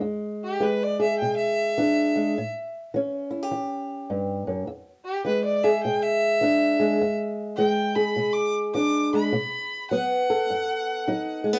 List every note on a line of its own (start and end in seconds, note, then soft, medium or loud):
0.00 0.56 E2 medium
0.00 0.59 G#3 medium
0.44 0.64 G4 medium
0.60 1.15 E3 medium
0.60 2.14 G#3 medium
0.60 0.85 B4 medium
0.83 1.01 D5 medium
1.00 2.33 G#4 medium
1.00 1.18 E5 medium
1.19 1.75 B2 medium
1.19 1.36 G5 medium
1.37 2.50 E5 loud
1.78 2.31 E3 medium
1.78 2.33 D4 medium
2.16 2.36 G#3 medium
2.38 2.90 A2 medium
2.94 3.47 E3 medium
2.94 4.66 C#4 medium
3.31 3.43 E4 medium
3.43 4.68 G4 medium
3.51 4.05 E3 medium
4.10 4.47 G2 medium
4.47 4.67 F#2 medium
4.67 5.21 E2 medium
5.05 5.24 G4 medium
5.25 5.79 E3 medium
5.25 6.78 G#3 medium
5.25 5.44 B4 medium
5.45 5.65 D5 medium
5.64 6.97 G#4 medium
5.64 5.83 E5 medium
5.83 6.38 B2 medium
5.83 6.05 G5 medium
6.03 7.15 E5 loud
6.41 6.95 E3 medium
6.41 6.97 D4 medium
6.80 7.57 G#3 medium
7.01 7.54 E2 medium
7.56 8.12 E3 medium
7.56 9.11 G#3 medium
7.56 7.97 G5 loud
7.96 9.29 G#4 medium
7.96 8.35 B5 medium
8.16 8.70 B2 medium
8.33 8.53 D6 medium
8.75 9.28 E3 medium
8.75 9.30 D4 medium
8.75 9.12 D6 medium
9.14 9.33 G#3 medium
9.14 9.88 B5 medium
9.32 9.86 B2 medium
9.91 10.44 F#3 medium
9.91 11.44 B3 medium
9.91 11.59 F#5 medium
10.30 11.59 A4 medium
10.50 11.03 F#2 medium
11.08 11.59 F#3 medium
11.08 11.59 D#4 medium
11.44 11.53 G#3 medium
11.53 11.59 B3 medium